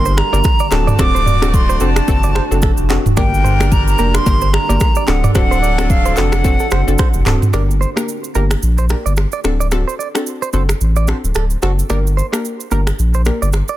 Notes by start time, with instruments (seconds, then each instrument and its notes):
Already playing: sub bass G1, ambient pad D3 G3 A#3 G4, horn section G3 D4 A#4, synth pluck G4 A#4, flute C6
0.05 clean electric guitar C5, shaker
0.17 flute A#5, finger snap, cross-stick
0.32 sub bass G1, synth pluck A#3 D4 G4 A#4, clean electric guitar D5, shaker
0.44 finger snap, kick, cross-stick, shaker
0.59 clean electric guitar D5, shaker
0.71 sub bass D1, horn section A3 F#4 D5, ambient pad A3 C4 F#4, synth pluck C4 D4 F#4 A4, flute A5, finger snap, cross-stick, clap, shaker
0.87 clean electric guitar D5, mid tom, shaker
0.99 sub bass D1, synth pluck C4 D4 F#4 A4, flute D6, finger snap, kick, cross-stick, shaker
1.15 clean electric guitar C5, shaker
1.26 clean electric guitar D5, mid tom, shaker
1.42 synth pluck C4 D4 F#4 A4, finger snap, cross-stick, shaker
1.48 flute D6
1.54 flute C6, kick, shaker
1.69 clean electric guitar C5, shaker
1.80 sub bass F1, synth pluck C4 D4 F#4 A4, clean electric guitar C5, flute A5, shaker
1.96 finger snap, cross-stick, shaker
2.08 sub bass F#1, synth pluck C4 D4 F#4 A4, kick, shaker
2.23 clean electric guitar D5, shaker
2.35 clean electric guitar C5, finger snap, cross-stick
2.51 sub bass F#1, synth pluck C4 D4 F#4 A4, shaker
2.62 clean electric guitar A4, finger snap, kick, cross-stick, shaker
2.77 sub bass F1, shaker
2.90 synth pluck C4 D4 F#4 A4, clean electric guitar F#4, finger snap, cross-stick, clap, shaker
3.05 sub bass D1, mid tom, shaker
3.17 sub bass G1, ambient pad D3 G3 A#3 G4, horn section G3 D4 A#4, synth pluck A#3 D4 G4 A#4, clean electric guitar D5, flute G5, finger snap, kick, cross-stick, shaker
3.34 shaker
3.44 clean electric guitar C5, mid tom, shaker
3.60 synth pluck A#3 D4 G4 A#4, finger snap, cross-stick, shaker
3.72 flute A#5, kick, shaker
3.88 flute A#5, shaker
3.98 sub bass F1, synth pluck A#3 D4 G4 A#4, clean electric guitar A#4, shaker
4.14 flute C6, finger snap, cross-stick, shaker
4.26 sub bass G1, synth pluck A#3 D4 G4 A#4, kick, shaker
4.41 clean electric guitar C5, shaker
4.53 flute A#5, finger snap, cross-stick
4.69 sub bass G1, synth pluck A#3 D4 G4 A#4, clean electric guitar D5, shaker
4.80 finger snap, kick, cross-stick, shaker
4.95 clean electric guitar D5, shaker
5.07 sub bass D1, ambient pad D3 A3 C4 F#4, horn section F#3 D4 A4, synth pluck C4 D4 F#4 A4, flute F#5, finger snap, cross-stick, clap, shaker
5.24 clean electric guitar D5, mid tom, shaker
5.35 sub bass D1, synth pluck C4 D4 F#4 A4, flute F#5, finger snap, kick, cross-stick, shaker
5.51 clean electric guitar C5, shaker
5.62 clean electric guitar D5, shaker
5.78 synth pluck C4 D4 F#4 A4, finger snap, cross-stick, shaker
5.90 flute F5, kick, shaker
6.06 clean electric guitar C5, shaker
6.16 sub bass F1, synth pluck C4 D4 F#4 A4, clean electric guitar A4, flute F#5, clap, shaker
6.32 finger snap, cross-stick, shaker
6.44 synth pluck C4 D4 F#4 A4, kick, shaker
6.60 clean electric guitar A4, shaker
6.71 sub bass F#1, clean electric guitar C5, finger snap, cross-stick, shaker
6.87 sub bass F#1, synth pluck C4 D4 F#4 A4, shaker
6.98 clean electric guitar C5, finger snap, kick, cross-stick, shaker
7.14 sub bass F1, shaker
7.26 sub bass D1, synth pluck C4 D4 F#4 A4, clean electric guitar A4, finger snap, cross-stick, clap, mid tom, shaker
7.42 mid tom, shaker
7.53 sub bass G1, synth pluck A#3 D4 G4 A#4, clean electric guitar D5, finger snap, cross-stick, shaker
7.71 shaker
7.81 clean electric guitar C5, shaker
7.96 synth pluck A#3 D4 G4 A#4, finger snap, cross-stick, shaker
8.08 shaker
8.24 shaker
8.35 sub bass G1, synth pluck A#3 D4 G4 A#4, clean electric guitar A#4, shaker
8.51 finger snap, cross-stick, shaker
8.63 sub bass A#1, shaker
8.78 clean electric guitar C5, shaker
8.89 synth pluck A#3 D4 G4 A#4, finger snap, cross-stick, shaker
9.06 sub bass G1, clean electric guitar D5, shaker
9.17 finger snap, cross-stick, shaker
9.32 clean electric guitar D5, shaker
9.44 sub bass D1, synth pluck C4 D4 F#4 A4, finger snap, cross-stick, shaker
9.60 clean electric guitar D5, shaker
9.71 synth pluck C4 D4 F#4 A4, finger snap, cross-stick, shaker
9.88 clean electric guitar C5, shaker
9.99 clean electric guitar D5, shaker
10.15 synth pluck C4 D4 F#4 A4, finger snap, cross-stick, shaker
10.27 shaker
10.42 clean electric guitar C5, shaker
10.53 sub bass F#1, synth pluck C4 D4 F#4 A4, clean electric guitar C5, shaker
10.69 finger snap, cross-stick, shaker
10.81 sub bass A1, shaker
10.96 clean electric guitar D5, shaker
11.07 synth pluck C4 D4 F#4 A4, clean electric guitar C5, finger snap, cross-stick, shaker
11.24 sub bass D1, shaker
11.35 sub bass D1, clean electric guitar A4, finger snap, cross-stick, shaker
11.50 shaker
11.62 sub bass F#1, synth pluck C4 D4 F#4 A4, clean electric guitar F#4, finger snap, cross-stick, shaker
11.79 shaker
11.89 sub bass G1, synth pluck A#3 D4 G4 A#4, clean electric guitar D5, finger snap, cross-stick, shaker
12.07 shaker
12.17 clean electric guitar C5, shaker
12.32 synth pluck A#3 D4 G4 A#4, finger snap, cross-stick, shaker
12.45 shaker
12.60 shaker
12.71 sub bass G1, synth pluck A#3 D4 G4 A#4, clean electric guitar A#4, shaker
12.87 finger snap, cross-stick, shaker
12.99 sub bass A#1, shaker
13.14 clean electric guitar C5, shaker
13.25 synth pluck A#3 D4 G4 A#4, finger snap, cross-stick, shaker
13.42 sub bass G1, clean electric guitar D5, shaker
13.53 finger snap, cross-stick, shaker
13.68 clean electric guitar D5, shaker